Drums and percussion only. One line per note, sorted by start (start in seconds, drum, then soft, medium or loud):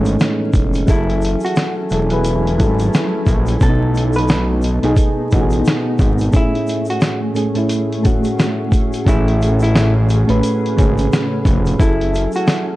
0.05 closed hi-hat soft
0.05 shaker soft
0.20 snare loud
0.20 closed hi-hat medium
0.20 shaker medium
0.53 kick medium
0.53 closed hi-hat medium
0.53 shaker medium
0.74 closed hi-hat medium
0.74 shaker soft
0.88 kick loud
0.88 closed hi-hat medium
0.88 shaker medium
1.10 closed hi-hat soft
1.22 closed hi-hat medium
1.22 shaker medium
1.40 shaker soft
1.46 closed hi-hat medium
1.56 snare loud
1.56 closed hi-hat medium
1.56 shaker medium
1.90 closed hi-hat medium
1.90 shaker soft
2.10 closed hi-hat soft
2.24 closed hi-hat loud
2.24 shaker medium
2.47 closed hi-hat soft
2.60 kick medium
2.60 closed hi-hat medium
2.60 shaker soft
2.79 closed hi-hat soft
2.79 shaker medium
2.94 snare loud
2.94 closed hi-hat medium
2.94 shaker medium
3.26 kick medium
3.26 closed hi-hat medium
3.26 shaker medium
3.46 closed hi-hat soft
3.46 shaker soft
3.61 kick loud
3.61 closed hi-hat medium
3.61 shaker medium
3.95 closed hi-hat medium
3.95 shaker soft
4.13 shaker soft
4.18 closed hi-hat soft
4.28 snare loud
4.28 closed hi-hat medium
4.28 shaker medium
4.62 closed hi-hat medium
4.62 shaker soft
4.83 closed hi-hat soft
4.96 kick loud
4.96 closed hi-hat medium
4.96 shaker medium
5.31 kick medium
5.31 closed hi-hat medium
5.31 shaker soft
5.50 closed hi-hat soft
5.50 shaker medium
5.65 snare loud
5.65 closed hi-hat medium
5.65 shaker medium
5.99 kick loud
5.99 closed hi-hat medium
5.99 shaker soft
6.18 closed hi-hat soft
6.18 shaker soft
6.33 kick loud
6.33 closed hi-hat medium
6.33 shaker medium
6.55 closed hi-hat soft
6.67 closed hi-hat medium
6.67 shaker soft
6.85 shaker soft
6.90 closed hi-hat soft
7.01 snare loud
7.01 closed hi-hat medium
7.01 shaker medium
7.36 closed hi-hat medium
7.36 shaker soft
7.55 closed hi-hat soft
7.69 closed hi-hat medium
7.69 shaker medium
7.92 closed hi-hat soft
8.05 kick medium
8.05 closed hi-hat medium
8.05 shaker soft
8.24 closed hi-hat soft
8.24 shaker medium
8.39 snare loud
8.39 closed hi-hat medium
8.39 shaker medium
8.72 kick medium
8.72 closed hi-hat medium
8.72 shaker medium
8.93 closed hi-hat soft
8.93 shaker soft
9.07 kick loud
9.07 closed hi-hat medium
9.07 shaker medium
9.28 closed hi-hat soft
9.42 closed hi-hat medium
9.42 shaker soft
9.60 shaker soft
9.64 closed hi-hat medium
9.75 snare loud
9.75 closed hi-hat medium
9.75 shaker medium
10.09 closed hi-hat medium
10.09 shaker soft
10.29 closed hi-hat soft
10.43 closed hi-hat medium
10.43 shaker medium
10.66 closed hi-hat soft
10.78 kick medium
10.78 closed hi-hat medium
10.78 shaker soft
10.98 closed hi-hat soft
10.98 shaker medium
11.13 snare loud
11.13 closed hi-hat medium
11.13 shaker medium
11.45 kick medium
11.45 closed hi-hat medium
11.45 shaker medium
11.66 closed hi-hat soft
11.66 shaker soft
11.80 kick loud
11.80 closed hi-hat medium
11.80 shaker medium
12.01 closed hi-hat soft
12.14 closed hi-hat medium
12.14 shaker soft
12.32 shaker soft
12.36 closed hi-hat soft
12.48 snare loud
12.48 closed hi-hat medium
12.48 shaker medium